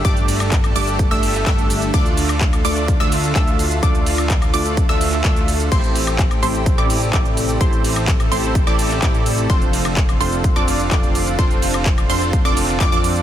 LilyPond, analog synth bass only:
\new Staff \with { instrumentName = "Analog synth bass" } { \clef bass \time 4/4 \key a \minor \tempo 4 = 127 g,,4. g,,8. g,,8. g,,4 | d,4. d,8. d,8. d,4 | d,4. d,8. d,8. d,4 | a,,4. a,,8. a,,8. a,,4 |
a,,4. a,,8. a,,8. a,,4 | f,,4. f,,8. f,,8. f,,4 | f,,4. f,,8. f,,8. f,,16 f,8. | }